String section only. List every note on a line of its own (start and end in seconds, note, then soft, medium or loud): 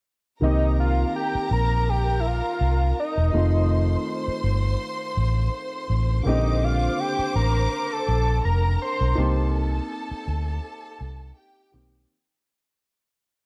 0.41 3.30 A#4 medium
0.41 3.30 A#5 medium
3.33 6.22 C5 medium
3.33 6.22 C6 medium
6.26 8.41 C5 medium
6.26 8.41 D6 medium
8.44 9.16 A#4 medium
8.44 9.16 A#5 medium
9.18 11.33 A4 medium
9.18 11.33 A5 medium
11.36 12.08 G4 medium
11.36 12.08 G5 medium